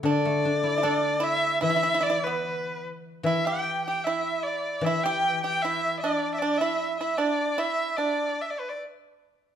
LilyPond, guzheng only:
\new Staff \with { instrumentName = "Guzheng" } { \time 2/4 \tempo 4 = 76 <d a d' e' a'>16 a16 d'16 e'16 a'4 | e2 | e2 | e2~ |
e4 r4 | r2 | }